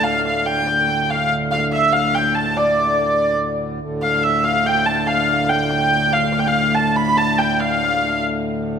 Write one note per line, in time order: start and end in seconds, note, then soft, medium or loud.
0.00 3.79 D2 medium
0.00 3.80 A2 medium
0.00 0.25 F5 medium
0.25 0.46 F5 medium
0.46 0.67 G5 medium
0.67 1.10 G5 medium
1.10 1.30 F5 medium
1.51 1.61 F5 medium
1.73 1.93 E5 medium
1.93 2.15 F5 medium
2.15 2.35 G5 medium
2.35 2.57 A5 medium
2.57 3.36 D5 medium
3.81 8.79 D2 medium
3.81 8.79 A2 medium
4.02 4.23 F5 medium
4.23 4.44 E5 medium
4.44 4.66 F5 medium
4.66 4.87 G5 medium
4.86 5.07 A5 medium
5.07 5.29 F5 medium
5.29 5.49 F5 medium
5.49 5.70 G5 medium
5.70 6.13 G5 medium
6.13 6.32 F5 medium
6.32 6.39 F5 medium
6.39 6.48 G5 medium
6.48 6.75 F5 medium
6.75 6.96 A5 medium
6.96 7.17 B5 loud
7.17 7.38 A5 medium
7.38 7.60 G5 medium
7.60 8.22 F5 medium